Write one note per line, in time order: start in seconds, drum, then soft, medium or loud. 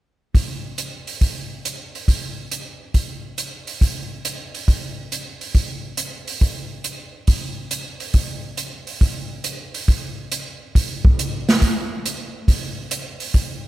0.35 kick soft
0.35 open hi-hat soft
0.78 closed hi-hat soft
1.07 open hi-hat soft
1.21 kick soft
1.21 open hi-hat soft
1.65 closed hi-hat soft
1.95 open hi-hat soft
2.08 kick soft
2.08 open hi-hat soft
2.52 closed hi-hat soft
2.94 kick soft
2.94 open hi-hat soft
3.38 closed hi-hat soft
3.67 open hi-hat soft
3.81 kick soft
3.81 open hi-hat soft
4.25 closed hi-hat soft
4.55 open hi-hat soft
4.68 kick soft
4.68 open hi-hat soft
5.12 closed hi-hat soft
5.41 open hi-hat soft
5.55 kick soft
5.55 open hi-hat soft
5.97 closed hi-hat soft
6.28 open hi-hat soft
6.41 kick soft
6.41 open hi-hat soft
6.84 closed hi-hat soft
7.27 kick soft
7.27 open hi-hat soft
7.71 closed hi-hat soft
8.00 open hi-hat soft
8.13 kick soft
8.13 open hi-hat soft
8.57 closed hi-hat soft
8.87 open hi-hat soft
9.01 kick soft
9.01 open hi-hat soft
9.44 closed hi-hat soft
9.74 open hi-hat soft
9.88 kick soft
9.88 open hi-hat soft
10.32 closed hi-hat soft
10.75 kick soft
10.75 open hi-hat soft
11.05 kick medium
11.19 closed hi-hat medium
11.49 snare soft
11.49 open hi-hat soft
11.62 kick soft
11.62 open hi-hat soft
12.06 closed hi-hat soft
12.48 kick soft
12.48 open hi-hat soft
12.91 closed hi-hat medium
13.20 open hi-hat soft
13.34 kick soft
13.34 open hi-hat soft